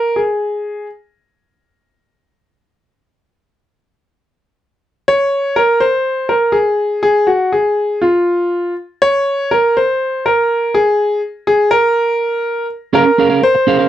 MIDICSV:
0, 0, Header, 1, 4, 480
1, 0, Start_track
1, 0, Key_signature, -5, "minor"
1, 0, Tempo, 490998
1, 1124, Time_signature, 4, 2, 24, 8
1, 13576, End_track
2, 0, Start_track
2, 0, Title_t, "Grand piano"
2, 0, Program_c, 0, 0
2, 0, Note_on_c, 0, 70, 89
2, 158, Note_on_c, 0, 68, 59
2, 177, Note_off_c, 0, 70, 0
2, 843, Note_off_c, 0, 68, 0
2, 4966, Note_on_c, 0, 73, 94
2, 5437, Note_on_c, 0, 70, 92
2, 5465, Note_off_c, 0, 73, 0
2, 5674, Note_on_c, 0, 72, 90
2, 5694, Note_off_c, 0, 70, 0
2, 6149, Note_on_c, 0, 70, 74
2, 6180, Note_off_c, 0, 72, 0
2, 6376, Note_on_c, 0, 68, 81
2, 6410, Note_off_c, 0, 70, 0
2, 6855, Note_off_c, 0, 68, 0
2, 6869, Note_on_c, 0, 68, 90
2, 7105, Note_on_c, 0, 66, 75
2, 7130, Note_off_c, 0, 68, 0
2, 7343, Note_off_c, 0, 66, 0
2, 7356, Note_on_c, 0, 68, 77
2, 7836, Note_on_c, 0, 65, 72
2, 7861, Note_off_c, 0, 68, 0
2, 8527, Note_off_c, 0, 65, 0
2, 8816, Note_on_c, 0, 73, 106
2, 9300, Note_on_c, 0, 70, 85
2, 9310, Note_off_c, 0, 73, 0
2, 9545, Note_off_c, 0, 70, 0
2, 9549, Note_on_c, 0, 72, 85
2, 10027, Note_on_c, 0, 70, 86
2, 10036, Note_off_c, 0, 72, 0
2, 10504, Note_on_c, 0, 68, 92
2, 10514, Note_off_c, 0, 70, 0
2, 10945, Note_off_c, 0, 68, 0
2, 11215, Note_on_c, 0, 68, 94
2, 11436, Note_off_c, 0, 68, 0
2, 11447, Note_on_c, 0, 70, 99
2, 12367, Note_off_c, 0, 70, 0
2, 12659, Note_on_c, 0, 70, 87
2, 13133, Note_on_c, 0, 72, 93
2, 13145, Note_off_c, 0, 70, 0
2, 13576, Note_off_c, 0, 72, 0
2, 13576, End_track
3, 0, Start_track
3, 0, Title_t, "Clean electric guitar"
3, 0, Program_c, 1, 27
3, 12641, Note_on_c, 1, 61, 89
3, 12641, Note_on_c, 1, 68, 93
3, 12644, Note_on_c, 1, 70, 90
3, 12649, Note_on_c, 1, 77, 90
3, 12756, Note_off_c, 1, 77, 0
3, 12762, Note_off_c, 1, 70, 0
3, 12765, Note_off_c, 1, 68, 0
3, 12804, Note_off_c, 1, 61, 0
3, 12888, Note_on_c, 1, 61, 71
3, 12893, Note_on_c, 1, 68, 77
3, 12899, Note_on_c, 1, 70, 66
3, 12902, Note_on_c, 1, 77, 65
3, 12988, Note_off_c, 1, 77, 0
3, 12989, Note_off_c, 1, 70, 0
3, 12993, Note_off_c, 1, 68, 0
3, 12996, Note_off_c, 1, 61, 0
3, 12999, Note_on_c, 1, 77, 62
3, 13000, Note_on_c, 1, 70, 58
3, 13005, Note_on_c, 1, 68, 56
3, 13008, Note_on_c, 1, 61, 52
3, 13116, Note_off_c, 1, 61, 0
3, 13121, Note_off_c, 1, 70, 0
3, 13122, Note_off_c, 1, 68, 0
3, 13125, Note_off_c, 1, 77, 0
3, 13363, Note_on_c, 1, 61, 93
3, 13371, Note_on_c, 1, 68, 98
3, 13373, Note_on_c, 1, 70, 86
3, 13373, Note_on_c, 1, 77, 93
3, 13466, Note_off_c, 1, 77, 0
3, 13475, Note_off_c, 1, 70, 0
3, 13477, Note_off_c, 1, 68, 0
3, 13478, Note_off_c, 1, 61, 0
3, 13478, Note_on_c, 1, 77, 65
3, 13487, Note_on_c, 1, 70, 71
3, 13489, Note_on_c, 1, 68, 60
3, 13490, Note_on_c, 1, 61, 57
3, 13576, Note_off_c, 1, 61, 0
3, 13576, Note_off_c, 1, 68, 0
3, 13576, Note_off_c, 1, 70, 0
3, 13576, Note_off_c, 1, 77, 0
3, 13576, End_track
4, 0, Start_track
4, 0, Title_t, "Muted clean electric guitar strokes"
4, 12768, Note_on_c, 9, 29, 52
4, 12865, Note_off_c, 9, 29, 0
4, 13128, Note_on_c, 9, 29, 42
4, 13226, Note_off_c, 9, 29, 0
4, 13244, Note_on_c, 9, 29, 51
4, 13342, Note_off_c, 9, 29, 0
4, 13576, End_track
0, 0, End_of_file